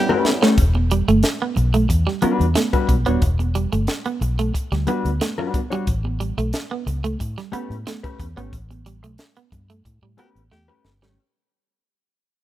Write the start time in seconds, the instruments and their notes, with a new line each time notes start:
Already playing: tonewheel organ G3 B3 C#4 E4, tenor saxophone G4
0.09 clean electric guitar A3 C#4 G4 B4, muted clean electric guitar stroke, muted conga, low conga
0.25 snare, high conga
0.42 clean electric guitar A3 C#4 G4 C#5, snare
0.58 fingered electric bass E1, kick, closed hi-hat, muted conga
0.75 muted clean electric guitar stroke, high conga
0.91 clean electric guitar G3, closed hi-hat
1.08 fingered electric bass G1, clean electric guitar A3, closed hi-hat
1.23 snare, closed hi-hat
1.42 clean electric guitar B3
1.56 fingered electric bass B1, muted clean electric guitar stroke, closed hi-hat, high conga, low conga
1.74 clean electric guitar A3, closed hi-hat
1.89 fingered electric bass E2, muted clean electric guitar stroke, kick, closed hi-hat, muted conga
2.07 clean electric guitar G3, snare, muted conga
2.22 clean electric guitar G3 B3 D4 F#4 B4, muted fingered electric bass stroke, closed hi-hat, high conga
2.40 fingered electric bass E2, closed hi-hat, high conga
2.55 clean electric guitar A3, snare, closed hi-hat, muted conga, high conga
2.73 clean electric guitar G3 D4 F#4 B4, kick, closed hi-hat, low conga
2.89 fingered electric bass B1, muted clean electric guitar stroke, kick, closed hi-hat, high conga
3.06 fingered electric bass D#1, clean electric guitar G3 B3 D4 F#4 C#5, closed hi-hat
3.22 fingered electric bass E1, kick, closed hi-hat, muted conga
3.39 muted clean electric guitar stroke, closed hi-hat, high conga
3.55 clean electric guitar G3, closed hi-hat
3.73 fingered electric bass G1, clean electric guitar A3, closed hi-hat
3.87 snare, closed hi-hat, muted conga
4.05 clean electric guitar B3, closed hi-hat, muted conga
4.21 fingered electric bass B1, muted clean electric guitar stroke, closed hi-hat, high conga, low conga
4.39 clean electric guitar A3, closed hi-hat
4.54 muted clean electric guitar stroke, kick, closed hi-hat
4.72 fingered electric bass D2, clean electric guitar G3, snare, closed hi-hat, muted conga
4.87 clean electric guitar G3 B3 D4 F#4 B4, closed hi-hat, high conga
5.05 fingered electric bass D2, closed hi-hat, high conga
5.21 clean electric guitar A3, snare, closed hi-hat, high conga
5.38 clean electric guitar G3 D4 F#4 B4, muted clean electric guitar stroke, muted conga, low conga
5.54 kick, closed hi-hat, high conga
5.70 clean electric guitar G3 D4 F#4 C#5, closed hi-hat
5.87 fingered electric bass A1, kick, closed hi-hat, muted conga
6.04 muted clean electric guitar stroke, high conga
6.20 clean electric guitar G3, closed hi-hat
6.37 fingered electric bass B1, clean electric guitar A3, closed hi-hat
6.53 snare, closed hi-hat, muted conga
6.71 clean electric guitar B3
6.86 fingered electric bass C#2, muted clean electric guitar stroke, closed hi-hat, high conga, low conga
7.04 clean electric guitar A3, closed hi-hat
7.20 fingered electric bass A2, muted clean electric guitar stroke, kick, closed hi-hat, muted conga
7.38 clean electric guitar G3, snare, closed hi-hat
7.52 clean electric guitar A3 B3 C#4 G4 B4, muted fingered electric bass stroke, closed hi-hat, high conga
7.70 fingered electric bass A2, closed hi-hat, high conga
7.87 clean electric guitar A3, snare, closed hi-hat, muted conga, high conga
8.03 clean electric guitar A3 C#4 G4 B4, kick, closed hi-hat, muted conga, low conga
8.20 fingered electric bass E2, muted clean electric guitar stroke, kick, closed hi-hat, high conga
8.36 fingered electric bass G#1, clean electric guitar A3 B3 C#4 G4 C#5, closed hi-hat
8.53 fingered electric bass A1, kick, closed hi-hat, muted conga
8.71 muted clean electric guitar stroke, closed hi-hat, muted conga, high conga
8.86 clean electric guitar G3, closed hi-hat
9.02 fingered electric bass B1, clean electric guitar A3, closed hi-hat
9.18 snare, closed hi-hat, muted conga
9.36 clean electric guitar B3, closed hi-hat, muted conga
9.52 fingered electric bass G2, muted clean electric guitar stroke, kick, closed hi-hat, high conga, low conga
9.70 clean electric guitar A3, closed hi-hat
9.85 fingered electric bass A2, muted clean electric guitar stroke, kick, closed hi-hat, muted conga
10.02 fingered electric bass A2, clean electric guitar G3, muted conga
10.17 clean electric guitar A3 B3 C#4 G4 B4, tenor saxophone G4, closed hi-hat, high conga
10.35 fingered electric bass A1, closed hi-hat, high conga
10.51 fingered electric bass E2, clean electric guitar A3, tenor saxophone G4, snare, muted conga, high conga
10.68 clean electric guitar A3 C#4 G4 B4, muted clean electric guitar stroke, muted conga, low conga
10.85 fingered electric bass G1, snare, high conga
11.02 fingered electric bass G#1, clean electric guitar G3 A3 C#4 G4 C#5, snare